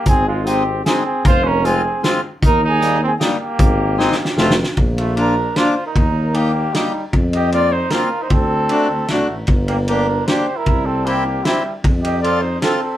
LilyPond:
<<
  \new Staff \with { instrumentName = "Flugelhorn" } { \time 3/4 \key aes \major \tempo 4 = 153 aes'8 f'8 g'4 aes'8 aes'8 | c''8 bes'8 aes'4 r4 | bes'8 aes'4 aes'8 g'4~ | g'2~ g'8 r8 |
\key bes \major r8 f'8 bes'4 c''8. bes'16~ | bes'4 g'4 ees'8. r16 | r8 ees''8 d''8 c''8 bes'8. c''16 | a'2 fis'8. r16 |
r8 g'8 bes'4 c''8. bes'16~ | bes'8 a'8 g'4 e'8. r16 | r8 ees''8 d''8 c''8 a'4 | }
  \new Staff \with { instrumentName = "Accordion" } { \time 3/4 \key aes \major r4 <aes c' ees'>8 r8 <aes c' ees'>8 r8 | r4 <aes c' f'>8 r8 <aes c' f'>8 r8 | r4 <g bes ees'>8 r8 <g bes ees'>8 r8 | r4 <aes c' ees'>8 r8 <a c' f'>8 r8 |
\key bes \major r4 <bes d' f'>8 r8 <bes d' f'>8 r8 | r4 <bes ees' g'>8 r8 <bes ees' g'>8 r8 | r4 <bes c' f'>8 r8 <bes c' f'>8 r8 | r4 <a d' fis'>8 r8 <a d' fis'>8 r8 |
r4 <bes d' g'>8 r8 <bes d' g'>8 r8 | r4 <c' e' g'>8 r8 <c' e' g'>8 r8 | r4 <c' f' a'>8 r8 <c' f' a'>8 r8 | }
  \new Staff \with { instrumentName = "Trumpet" } { \time 3/4 \key aes \major c'8 aes8 c'4 c'8 c'8 | f'8 des'8 c'4 r4 | ees'8 ees'4 c'8 bes4~ | bes2~ bes8 r8 |
\key bes \major r8 a8 d'4 f'8. ees'16~ | ees'4 bes4 g8. r16 | r8 g'8 f'8 ees'8 f'8. ees'16 | c'2 a8. r16 |
r8 bes8 d'4 g'8. e'16~ | e'8 c'8 bes4 g8. r16 | r8 g'8 f'8 ees'8 c'4 | }
  \new Staff \with { instrumentName = "Tuba" } { \clef bass \time 3/4 \key aes \major aes,,2. | f,,2. | ees,2. | aes,,2 f,,4 |
\key bes \major bes,,2. | ees,2. | f,2. | d,4. d,8 c,8 a,,8 |
g,,2. | c,2. | f,2. | }
  \new DrumStaff \with { instrumentName = "Drums" } \drummode { \time 3/4 <hh bd>4 hh4 <hh sn>4 | <hh bd>4 hh4 <hh sn>4 | <hh bd>4 hh4 <hh sn>4 | <hh bd>4 \tuplet 3/2 { sn8 sn8 sn8 sn8 sn8 sn8 } |
<bd cymr>8 cymr8 cymr4 <cymr sn>4 | <bd cymr>4 cymr4 <cymr sn>4 | <bd cymr>8 cymr8 cymr4 <cymr sn>4 | <bd cymr>4 cymr4 <cymr sn>4 |
<bd cymr>8 cymr8 cymr4 <cymr sn>4 | <bd cymr>4 cymr4 <cymr sn>4 | <bd cymr>8 cymr8 cymr4 <cymr sn>4 | }
>>